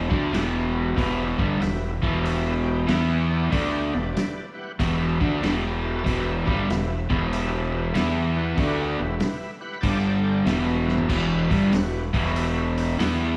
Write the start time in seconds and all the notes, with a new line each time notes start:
Already playing: E2 E3
0.10 D2 D3 A3 D4 E4 G4 B4 D5, kick
0.32 E1 E2 B2 E3 E4 G4 B4 F#5, snare, open hi-hat
0.72 E4 G4 B4 F#5
0.94 E1 E2 B2 E3 E4 G4 B4 E5, kick, open hi-hat
1.38 G1 G2 D3 G3 E4 G4 B4 E5, kick
1.59 E1 E2 B2 E4 G4 B4 E5, snare, open hi-hat
2.02 E1 E2 B2 E3 E4 G4 B4 E5, kick
2.22 E4 G4 B4 E5, open hi-hat
2.62 E4 G4 B4 G5
2.87 E2 E3 B3 E4 G4 B4 F#5, snare, open hi-hat
3.30 E4 G4 B4 D5
3.50 D2 D3 A3 D4 E4 G4 B4 G5, kick, open hi-hat
3.92 E1 E2 B2 E4 G4 B4 D5
4.14 E4 G4 B4 D5, snare, open hi-hat
4.54 E4 G4 B4 F#5
4.79 E1 E2 B2 E3 E4 G4 B4 E5, kick, open hi-hat
5.20 D2 D3 A3 D4 E4 G4 B4 E5, kick
5.42 E1 E2 B2 E3 E4 G4 B4 E5 G5, snare, open hi-hat
5.64 A5
5.85 E4 G4 B4 E5
6.04 E1 E2 B2 E3 E4 G4 B4 E5, kick, open hi-hat
6.46 G1 G2 D3 G3 E4 G4 B4 E5, kick
6.69 E1 E2 B2 E4 G4 B4 E5, snare, open hi-hat
7.09 E1 E2 B2 E3 E4 G4 B4 E5, kick
7.32 E4 G4 B4 E5, open hi-hat
7.71 E4 G4 B4 E5
7.93 E2 E3 B3 E4 G4 B4 E5, snare, open hi-hat
8.34 E4 G4 B4 F#5
8.55 D2 D3 A3 D4 E4 G4 B4 F#5, kick, open hi-hat
8.98 E1 E2 B2 E4 G4 B4 E5
9.19 E4 G4 B4 E5, snare, open hi-hat
9.61 E4 G4 B4 F#5 B5
9.81 G1 G2 D3 G3 D4 G4 D5 G5 A5, kick, open hi-hat
10.23 D4 G4 D5 G5
10.45 E1 E2 B2 E3 E4 G4 B4 E5, snare, open hi-hat
10.86 E4 G4 B4 E5, snare
10.98 floor tom
11.09 E1 E2 B2 E3 E4 G4 B4 E5, kick, crash
11.49 G1 G2 D3 G3 E4 G4 B4 E5, kick, open hi-hat
11.72 E1 E2 B2 E4 G4 B4 F#5, snare, open hi-hat
12.13 E1 E2 B2 E3 E4 G4 B4 E5, kick, open hi-hat
12.26 snare
12.35 E4 G4 B4 E5, open hi-hat
12.76 E4 G4 B4 E5, open hi-hat
12.98 E2 E3 B3 E4 G4 B4 D5, snare, open hi-hat